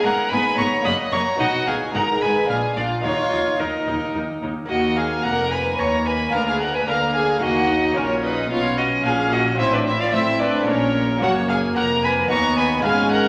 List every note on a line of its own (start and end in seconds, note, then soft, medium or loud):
0.00 0.12 G#1 medium
0.00 0.12 G#2 medium
0.00 0.80 B3 medium
0.00 0.12 B3 medium
0.00 0.81 C#4 medium
0.00 0.82 F4 medium
0.00 0.30 F#5 medium
0.00 0.31 A#5 loud
0.04 0.29 G#2 medium
0.04 0.31 A#4 loud
0.31 0.39 G#1 medium
0.31 0.39 G#2 medium
0.31 0.56 G#2 medium
0.31 0.39 B3 medium
0.31 0.58 B4 medium
0.31 0.57 G#5 loud
0.31 0.58 B5 loud
0.58 0.66 G#1 medium
0.58 0.66 G#2 medium
0.58 0.83 G#2 medium
0.58 0.66 B3 medium
0.58 0.86 C#5 loud
0.58 0.85 A#5 medium
0.58 0.66 C#6 loud
0.82 0.93 F#1 medium
0.82 0.93 F#2 medium
0.82 1.35 A#3 medium
0.82 0.93 A#3 medium
0.82 1.37 C#4 medium
0.82 1.38 F#4 medium
0.82 0.93 B5 loud
0.82 0.93 D#6 loud
0.86 1.10 F#2 medium
0.86 1.13 D#5 loud
1.12 1.20 F#1 medium
1.12 1.20 F#2 medium
1.12 1.37 F#2 medium
1.12 1.21 A#3 medium
1.12 1.40 C#5 medium
1.12 1.41 A#5 loud
1.12 1.20 C#6 loud
1.36 1.47 B1 medium
1.36 1.48 B2 loud
1.36 1.89 B3 medium
1.36 1.91 D#4 medium
1.36 1.47 D#4 medium
1.36 1.92 F#4 medium
1.36 1.67 F#4 loud
1.36 1.66 F#5 loud
1.40 1.65 B2 medium
1.40 1.66 D#5 loud
1.66 1.74 B1 medium
1.66 1.75 B2 medium
1.66 1.92 B2 medium
1.66 1.75 D#4 medium
1.66 1.75 G#4 medium
1.66 1.75 F5 medium
1.66 1.94 G#5 loud
1.90 2.02 G#1 medium
1.90 2.02 G#2 medium
1.90 2.45 B3 medium
1.90 2.46 D#4 medium
1.90 2.02 D#4 medium
1.90 2.47 G#4 medium
1.94 2.19 G#2 medium
1.94 2.21 A#4 medium
1.94 2.03 F#5 medium
1.94 2.21 A#5 loud
2.21 2.30 G#1 medium
2.21 2.29 G#2 medium
2.21 2.47 G#2 medium
2.21 2.30 D#4 medium
2.21 2.49 B4 medium
2.21 2.49 G#5 medium
2.21 2.49 B5 loud
2.45 2.56 A#1 medium
2.45 2.57 A#2 medium
2.45 2.99 A#3 medium
2.45 3.01 D4 medium
2.45 2.57 D4 medium
2.45 3.02 F4 medium
2.45 2.76 G#5 loud
2.49 2.74 A#2 medium
2.49 2.76 G#4 medium
2.49 2.58 F5 medium
2.76 2.84 A#1 medium
2.76 2.84 A#2 medium
2.76 3.02 A#2 medium
2.76 2.84 D4 medium
2.76 3.03 F4 medium
2.76 2.84 D5 medium
2.76 3.02 F5 medium
3.00 4.64 A#3 medium
3.00 4.64 D#4 medium
3.00 4.65 F#4 medium
3.00 3.58 F5 loud
3.04 3.12 D#2 medium
3.04 3.29 D#2 medium
3.04 3.13 D#4 medium
3.04 3.58 F4 loud
3.04 3.61 C#5 loud
3.32 3.40 D#2 medium
3.32 3.57 D#2 medium
3.32 3.40 D#4 medium
3.59 3.67 D#2 medium
3.59 3.68 D#2 medium
3.59 3.85 D#2 medium
3.59 4.42 D#4 medium
3.59 3.68 D#4 medium
3.59 4.42 A#4 medium
3.59 4.42 D#5 medium
3.87 3.95 D#2 medium
3.87 4.12 D#2 medium
3.87 3.96 D#4 medium
4.14 4.23 D#2 medium
4.14 4.40 D#2 medium
4.14 4.22 D#4 medium
4.42 4.50 D#2 medium
4.42 4.67 D#2 medium
4.42 4.50 D#4 medium
4.65 5.21 A#3 medium
4.65 6.28 D#4 medium
4.65 6.28 F#4 medium
4.65 4.95 F#5 medium
4.70 5.20 D#2 medium
4.70 5.21 D#2 medium
4.70 5.75 A#3 medium
4.70 4.95 F#4 medium
4.70 4.98 D#5 medium
4.97 5.05 G#4 medium
4.97 5.25 F5 medium
4.97 5.24 G#5 loud
5.24 5.78 F1 medium
5.24 5.78 F2 medium
5.24 5.75 F2 medium
5.24 5.51 A#4 medium
5.24 5.50 F#5 medium
5.24 5.51 A#5 loud
5.51 5.79 B4 loud
5.51 5.80 G#5 medium
5.51 5.59 B5 medium
5.79 6.32 D#2 medium
5.79 6.29 D#2 medium
5.79 6.32 A#3 medium
5.79 6.06 C#5 medium
5.79 6.07 A#5 medium
5.79 5.87 C#6 medium
6.05 6.33 B4 medium
6.05 6.34 G#5 medium
6.05 6.32 B5 loud
6.29 6.86 D2 medium
6.29 7.37 A#3 medium
6.29 7.37 F4 medium
6.29 6.46 F5 loud
6.33 6.87 D2 medium
6.33 6.84 D2 medium
6.33 6.88 D4 medium
6.33 6.47 A#4 medium
6.33 6.47 A#5 loud
6.47 6.60 G#4 medium
6.47 6.60 F5 medium
6.47 6.61 G#5 loud
6.60 6.74 A#4 medium
6.60 6.76 F#5 medium
6.60 6.74 A#5 loud
6.74 6.80 B4 medium
6.74 6.88 G#5 medium
6.74 6.88 B5 medium
6.87 7.41 D2 medium
6.87 7.41 D3 medium
6.87 7.38 D3 medium
6.87 7.41 A#3 medium
6.87 6.96 A#4 medium
6.87 7.15 F5 medium
6.87 7.15 A#5 loud
7.15 7.42 G#4 medium
7.15 7.44 F5 medium
7.15 7.41 G#5 loud
7.38 7.96 D#2 medium
7.38 7.91 A#3 medium
7.38 7.93 D#4 medium
7.38 7.94 F#4 medium
7.38 7.95 F#4 loud
7.38 7.95 F#5 loud
7.42 7.96 D#2 medium
7.42 7.93 D#2 medium
7.42 7.69 A#3 medium
7.42 7.98 D#5 loud
7.69 7.96 D#4 medium
7.92 8.50 A#1 medium
7.92 9.53 A#3 medium
7.92 9.54 C#4 medium
7.92 9.55 F4 medium
7.92 8.23 C#5 loud
7.97 8.50 A#2 medium
7.97 8.47 A#2 medium
7.97 8.50 C#4 medium
7.97 8.05 C#4 medium
7.97 8.23 A#4 medium
8.23 8.50 D#4 medium
8.23 8.50 B4 medium
8.23 8.51 D#5 loud
8.50 9.04 B1 medium
8.50 9.01 B2 medium
8.50 9.04 B2 medium
8.50 9.57 C#4 medium
8.50 8.78 F4 medium
8.50 8.80 C#5 medium
8.50 8.77 F5 loud
8.77 8.86 F#4 medium
8.77 9.05 D#5 medium
8.77 8.85 F#5 medium
9.05 9.59 A#1 medium
9.05 9.58 A#2 medium
9.05 9.55 A#2 medium
9.05 9.32 G#4 loud
9.05 9.34 F5 loud
9.05 9.13 G#5 loud
9.31 9.60 F#4 medium
9.31 9.59 D#5 medium
9.31 9.39 F#5 medium
9.55 10.62 C4 medium
9.55 10.63 F4 medium
9.55 9.72 E5 loud
9.59 10.13 A1 medium
9.59 10.12 A2 medium
9.59 10.10 A2 medium
9.59 10.12 C4 medium
9.59 9.73 E4 loud
9.59 9.75 C5 loud
9.73 9.87 D4 medium
9.73 9.85 B4 medium
9.73 9.79 D5 loud
9.86 10.00 E4 medium
9.86 9.92 C5 medium
9.86 10.00 E5 loud
10.00 10.14 F4 medium
10.00 10.15 D5 medium
10.00 10.06 F5 loud
10.13 10.68 A2 medium
10.13 10.68 A3 medium
10.13 10.62 A3 medium
10.13 10.67 C4 medium
10.13 10.41 E4 loud
10.13 10.40 C5 medium
10.13 10.40 E5 loud
10.41 10.68 D4 medium
10.41 10.67 B4 medium
10.41 10.68 D5 loud
10.63 11.17 A#3 medium
10.63 11.18 C#4 medium
10.63 11.20 F4 medium
10.67 11.21 A#1 medium
10.67 11.18 A#2 medium
10.67 11.21 A#2 medium
10.67 10.94 A#3 medium
10.67 11.22 C#4 medium
10.67 11.24 A#4 medium
10.67 11.22 C#5 loud
10.95 12.28 A#3 medium
11.18 11.76 F#2 medium
11.18 11.73 A#3 medium
11.18 11.73 C#4 medium
11.18 12.27 F#4 medium
11.18 11.49 C#5 loud
11.18 11.30 F#5 loud
11.22 11.76 F#1 medium
11.22 11.73 F#2 medium
11.22 11.31 F#4 loud
11.49 11.57 G#4 loud
11.49 11.57 F5 medium
11.49 11.76 G#5 loud
11.76 12.30 F1 medium
11.76 12.29 F2 loud
11.76 12.27 F2 medium
11.76 12.03 A#4 loud
11.76 11.84 F#5 medium
11.76 12.03 A#5 loud
12.03 12.31 B4 loud
12.03 12.30 G#5 medium
12.03 12.12 B5 loud
12.26 12.84 D#2 medium
12.26 12.79 B3 medium
12.26 12.85 B3 medium
12.26 12.80 D#4 medium
12.26 12.81 F#4 medium
12.30 12.84 D#2 medium
12.30 12.81 D#2 medium
12.30 12.38 C#5 loud
12.30 12.57 A#5 loud
12.30 12.57 C#6 loud
12.58 12.66 B4 loud
12.58 12.84 G#5 loud
12.58 12.85 B5 loud
12.79 13.28 G#3 medium
12.79 13.28 B3 medium
12.79 13.28 F4 medium
12.83 13.28 G#1 medium
12.83 13.28 G#2 loud
12.83 13.28 G#2 medium
12.83 13.28 C#4 medium
12.83 13.28 G#4 medium
12.83 12.93 G#4 medium
12.83 13.11 F5 loud
12.83 13.12 G#5 loud
13.12 13.28 A#4 medium
13.12 13.28 F#5 medium
13.12 13.28 A#5 loud